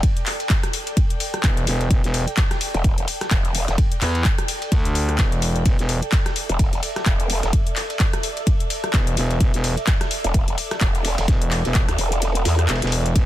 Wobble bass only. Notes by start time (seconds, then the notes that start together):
2.74 E1
2.98 E1
3.31 E1
3.68 E1
6.49 E1
6.73 E1
7.06 E1
7.43 E1
10.24 E1
10.48 E1
10.81 E1
11.18 E1
11.88 D2
11.98 E1
12.45 E2